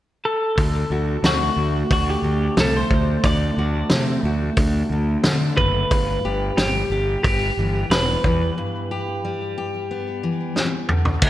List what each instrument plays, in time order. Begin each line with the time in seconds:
0.25 clean electric guitar A4
0.58 fingered electric bass D2, steel-string acoustic guitar D3, kick, open hi-hat
0.90 fingered electric bass D2, steel-string acoustic guitar F#4
1.23 fingered electric bass D2, steel-string acoustic guitar A3, clean electric guitar F#4, snare, open hi-hat
1.56 fingered electric bass D2
1.90 fingered electric bass D2, steel-string acoustic guitar D4, clean electric guitar F#4, kick, open hi-hat
2.10 clean electric guitar G4
2.22 fingered electric bass D2, steel-string acoustic guitar D3
2.57 fingered electric bass C2, steel-string acoustic guitar A3, clean electric guitar A4, snare, open hi-hat
2.77 clean electric guitar C5
2.90 fingered electric bass D2, steel-string acoustic guitar D3, kick
3.23 fingered electric bass D2, steel-string acoustic guitar D3, clean electric guitar D5, kick, open hi-hat
3.57 fingered electric bass D2, steel-string acoustic guitar F#4
3.90 fingered electric bass C3, steel-string acoustic guitar A3, snare, open hi-hat
4.23 fingered electric bass D2, steel-string acoustic guitar F#4
4.57 fingered electric bass D2, steel-string acoustic guitar D4, kick, open hi-hat
4.90 fingered electric bass D2, steel-string acoustic guitar D3
5.24 fingered electric bass D3, steel-string acoustic guitar A3, snare, open hi-hat
5.57 fingered electric bass F#1, steel-string acoustic guitar D3, clean electric guitar B4, kick
5.91 fingered electric bass G1, steel-string acoustic guitar G2, kick, open hi-hat
6.24 fingered electric bass G1, steel-string acoustic guitar G4
6.57 fingered electric bass G1, steel-string acoustic guitar G3, clean electric guitar G4, snare, open hi-hat
6.90 fingered electric bass G1, steel-string acoustic guitar G4
7.23 fingered electric bass G1, steel-string acoustic guitar B3, clean electric guitar G4, kick, open hi-hat
7.57 fingered electric bass G1, steel-string acoustic guitar E3
7.90 fingered electric bass E1, steel-string acoustic guitar G3, clean electric guitar B4, snare, open hi-hat
8.24 fingered electric bass E2, steel-string acoustic guitar E3, kick
8.58 steel-string acoustic guitar G2
8.91 steel-string acoustic guitar G4
9.25 steel-string acoustic guitar G3
9.58 steel-string acoustic guitar G4
9.91 steel-string acoustic guitar B3
10.23 steel-string acoustic guitar E3
10.56 steel-string acoustic guitar G3, snare
10.89 steel-string acoustic guitar D3, mid tom
11.05 floor tom
11.22 fingered electric bass D2, steel-string acoustic guitar D3, kick, crash